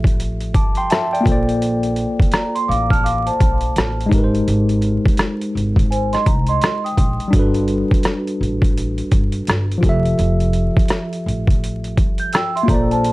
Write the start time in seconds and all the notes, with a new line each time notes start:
Already playing: A1 F3 F4 G4 A4 E5
0.04 kick, closed hi-hat
0.20 closed hi-hat
0.41 closed hi-hat
0.54 G1 A5 D6, kick, closed hi-hat
0.75 G5 C6, closed hi-hat
0.90 E5 A5, cross-stick, closed hi-hat
1.13 D5 G5, closed hi-hat
1.21 A#3 F4
1.26 A#1 A4 C5, kick, closed hi-hat
1.32 D5
1.49 closed hi-hat
1.62 closed hi-hat
1.83 closed hi-hat
1.96 closed hi-hat
2.20 kick, closed hi-hat
2.32 D5 A#5, cross-stick, closed hi-hat
2.55 C6, closed hi-hat
2.68 A1 F5 D6, closed hi-hat
2.90 A5 F6, kick, closed hi-hat
3.04 F5 D6, closed hi-hat
3.26 C5 A5, closed hi-hat
3.40 A#1, kick, closed hi-hat
3.61 closed hi-hat
3.76 A1, cross-stick, closed hi-hat
4.01 closed hi-hat
4.06 G#3 D#4
4.12 G#1 G4 A#4, kick, closed hi-hat
4.17 B4
4.24 C5
4.35 closed hi-hat
4.48 G#1, closed hi-hat
4.69 closed hi-hat
4.82 closed hi-hat
5.06 kick, closed hi-hat
5.17 cross-stick, closed hi-hat
5.42 closed hi-hat
5.55 G#1, closed hi-hat
5.76 kick, closed hi-hat
5.91 C5 G#5, closed hi-hat
6.13 D#5 C6, cross-stick, closed hi-hat
6.26 C2 A#5, kick, closed hi-hat
6.47 D#5 C6, closed hi-hat
6.61 cross-stick, closed hi-hat
6.84 G5 D#6, closed hi-hat
6.98 A#1, kick, closed hi-hat
7.20 closed hi-hat
7.28 G3 D4
7.33 G1 F#4 A4, kick, closed hi-hat
7.39 B4
7.54 closed hi-hat
7.68 closed hi-hat
7.91 kick, closed hi-hat
8.03 cross-stick, closed hi-hat
8.27 closed hi-hat
8.41 A1, closed hi-hat
8.62 kick, closed hi-hat
8.78 closed hi-hat
8.98 closed hi-hat
9.12 G1, kick, closed hi-hat
9.32 closed hi-hat
9.47 G1, cross-stick, closed hi-hat
9.72 closed hi-hat
9.78 F3 F4
9.83 F1 G4 A4, kick, closed hi-hat
9.89 E5
10.05 closed hi-hat
10.19 F1, closed hi-hat
10.40 closed hi-hat
10.53 closed hi-hat
10.77 kick, closed hi-hat
10.88 cross-stick, closed hi-hat
11.13 closed hi-hat
11.26 A1, closed hi-hat
11.47 kick, closed hi-hat
11.64 closed hi-hat
11.84 closed hi-hat
11.97 G1, kick, closed hi-hat
12.18 G6, closed hi-hat
12.33 G5 E6, cross-stick, closed hi-hat
12.56 E5 C6, closed hi-hat
12.63 A#3 F4
12.68 A#1 A4 C5 D5 A#5, kick, closed hi-hat
12.74 D5
12.91 C5 A5, closed hi-hat
13.04 closed hi-hat